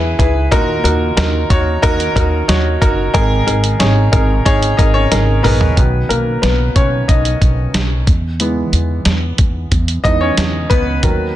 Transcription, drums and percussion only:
0.19 kick, closed hi-hat
0.52 kick, closed hi-hat
0.85 closed hi-hat
1.17 snare, closed hi-hat
1.50 kick, closed hi-hat
1.83 kick, closed hi-hat
2.00 closed hi-hat
2.16 kick, closed hi-hat
2.49 snare, closed hi-hat
2.82 kick, closed hi-hat
3.14 kick, closed hi-hat
3.48 closed hi-hat
3.64 closed hi-hat
3.80 snare, closed hi-hat
4.13 kick, closed hi-hat
4.46 kick, closed hi-hat
4.63 closed hi-hat
4.79 kick, closed hi-hat
5.12 snare, closed hi-hat
5.44 mid tom, open hi-hat
5.61 floor tom
5.77 kick, closed hi-hat
6.10 closed hi-hat
6.43 snare, closed hi-hat
6.76 kick, closed hi-hat
7.09 kick, closed hi-hat
7.25 closed hi-hat
7.42 kick, closed hi-hat
7.74 snare, closed hi-hat
8.07 kick, closed hi-hat
8.40 closed hi-hat
8.73 closed hi-hat
9.05 snare, closed hi-hat
9.38 kick, closed hi-hat
9.72 kick, closed hi-hat
9.88 closed hi-hat
10.05 kick, closed hi-hat
10.37 snare, closed hi-hat
10.70 kick, closed hi-hat
11.03 kick, closed hi-hat

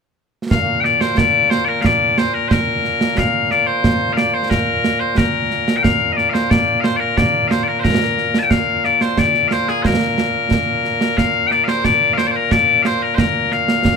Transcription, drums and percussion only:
0.51 concert bass drum, snare
0.85 snare
1.01 snare
1.18 concert bass drum, snare
1.51 snare
1.84 concert bass drum, snare
2.18 snare
2.51 concert bass drum, snare
2.84 snare
3.01 snare
3.18 concert bass drum, snare
3.51 snare
3.84 concert bass drum, snare
4.17 snare
4.51 concert bass drum, snare
4.84 snare
5.18 concert bass drum, snare
5.51 snare
5.68 snare
5.84 concert bass drum, snare
6.18 snare
6.35 snare
6.51 concert bass drum, snare
6.84 snare
7.18 concert bass drum, snare
7.51 snare
7.85 concert bass drum, snare
8.18 snare
8.34 snare
8.51 concert bass drum, snare
8.84 snare
9.01 snare
9.18 concert bass drum, snare
9.34 snare
9.51 snare
9.68 snare
9.85 concert bass drum, snare
10.18 snare
10.51 concert bass drum, snare
10.85 snare
11.01 snare
11.18 concert bass drum, snare
11.51 snare
11.68 snare
11.85 concert bass drum, snare
12.18 snare
12.51 concert bass drum, snare
12.85 snare
13.18 concert bass drum, snare
13.52 snare
13.68 snare
13.85 concert bass drum, snare

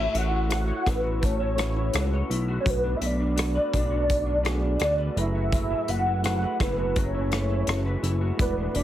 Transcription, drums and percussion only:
0.15 closed hi-hat
0.50 cross-stick, closed hi-hat
0.86 kick, cross-stick, closed hi-hat
1.23 kick, closed hi-hat
1.58 cross-stick, closed hi-hat
1.93 cross-stick, closed hi-hat
2.31 closed hi-hat
2.66 kick, closed hi-hat
3.02 closed hi-hat
3.37 cross-stick, closed hi-hat
3.73 kick, closed hi-hat
4.10 kick, closed hi-hat
4.45 cross-stick, closed hi-hat
4.80 cross-stick, closed hi-hat
5.17 closed hi-hat
5.52 kick, closed hi-hat
5.88 closed hi-hat
6.24 cross-stick, closed hi-hat
6.60 kick, cross-stick, closed hi-hat
6.96 kick, closed hi-hat
7.32 cross-stick, closed hi-hat
7.67 cross-stick, closed hi-hat
8.04 closed hi-hat
8.39 kick, closed hi-hat
8.75 closed hi-hat

